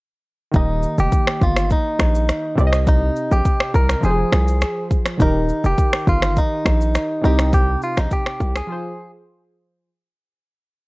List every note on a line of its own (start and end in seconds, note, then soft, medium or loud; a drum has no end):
0.52 0.86 D#1 loud
0.52 2.53 D#3 medium
0.52 2.53 A#3 medium
0.52 2.54 G4 medium
0.52 kick loud
0.52 shaker medium
0.56 0.96 D#4 medium
0.56 2.55 D#5 medium
0.83 shaker medium
0.98 1.08 F1 medium
0.98 1.44 G4 loud
0.98 shaker medium
1.12 kick medium
1.12 shaker medium
1.27 finger snap medium
1.27 cross-stick loud
1.41 1.73 G1 medium
1.41 1.72 F4 medium
1.41 kick medium
1.41 shaker soft
1.56 finger snap medium
1.56 cross-stick medium
1.56 shaker medium
1.70 2.55 D#4 medium
1.70 kick medium
1.70 shaker medium
1.99 2.31 A#1 medium
1.99 finger snap medium
1.99 kick medium
1.99 cross-stick medium
1.99 shaker medium
2.15 shaker medium
2.28 finger snap medium
2.28 cross-stick medium
2.28 shaker medium
2.55 3.11 C2 loud
2.55 3.99 C3 medium
2.55 4.00 C4 medium
2.55 4.01 G4 medium
2.55 shaker soft
2.60 2.66 D5 medium
2.67 4.05 D#5 medium
2.73 finger snap medium
2.73 cross-stick medium
2.73 shaker medium
2.87 3.33 D#4 medium
2.87 kick loud
2.87 shaker medium
3.16 shaker medium
3.31 3.41 A#1 medium
3.31 3.72 G4 medium
3.31 shaker medium
3.45 kick medium
3.45 shaker medium
3.60 finger snap medium
3.60 cross-stick loud
3.74 3.95 C2 medium
3.74 4.02 A#4 loud
3.74 kick medium
3.74 shaker soft
3.89 finger snap medium
3.89 cross-stick medium
3.89 shaker medium
4.01 4.24 F1 medium
4.01 5.16 F3 medium
4.01 5.17 F4 medium
4.01 4.11 G4 soft
4.01 4.88 G#4 medium
4.01 shaker medium
4.06 5.19 C5 medium
4.11 5.21 G#4 medium
4.32 4.64 C2 loud
4.32 finger snap medium
4.32 cross-stick medium
4.32 shaker medium
4.48 shaker medium
4.61 finger snap medium
4.61 cross-stick medium
4.61 shaker medium
4.91 kick medium
4.91 shaker soft
5.06 finger snap medium
5.06 cross-stick medium
5.06 shaker medium
5.17 5.52 D#1 loud
5.17 7.19 D#3 medium
5.17 7.19 D#4 medium
5.17 7.20 G4 medium
5.17 kick loud
5.17 shaker medium
5.22 5.66 D#4 medium
5.22 7.21 A#4 medium
5.49 shaker medium
5.64 5.74 F1 medium
5.64 6.08 G4 medium
5.64 shaker medium
5.78 kick medium
5.78 shaker medium
5.93 finger snap medium
5.93 cross-stick loud
6.07 6.39 G1 medium
6.07 6.38 F4 medium
6.07 kick medium
6.07 shaker soft
6.22 finger snap medium
6.22 cross-stick loud
6.22 shaker medium
6.36 7.24 D#4 medium
6.36 kick medium
6.36 shaker medium
6.65 6.97 A#1 medium
6.65 finger snap medium
6.65 kick medium
6.65 cross-stick medium
6.65 shaker medium
6.81 shaker medium
6.94 finger snap medium
6.94 cross-stick medium
6.94 shaker medium
7.21 7.77 C2 loud
7.21 8.65 C3 medium
7.21 8.66 C4 medium
7.21 8.67 D#4 medium
7.21 7.52 D#4 medium
7.21 shaker soft
7.26 8.68 G4 medium
7.39 finger snap medium
7.39 cross-stick medium
7.39 shaker medium
7.53 7.81 G4 loud
7.53 kick loud
7.53 shaker medium
7.82 7.98 F4 medium
7.82 shaker medium
7.97 8.07 A#1 medium
7.97 8.12 D#4 medium
7.97 finger snap medium
7.97 cross-stick medium
7.97 shaker medium
8.11 8.56 G4 loud
8.11 kick medium
8.11 shaker medium
8.26 finger snap medium
8.26 cross-stick loud
8.40 8.61 C2 medium
8.40 kick medium
8.40 shaker soft
8.55 9.10 G#4 medium
8.55 finger snap medium
8.55 cross-stick loud
8.55 shaker medium
8.67 9.82 F3 medium
8.67 9.83 F4 medium
8.67 9.84 G#4 medium
8.72 9.85 C5 medium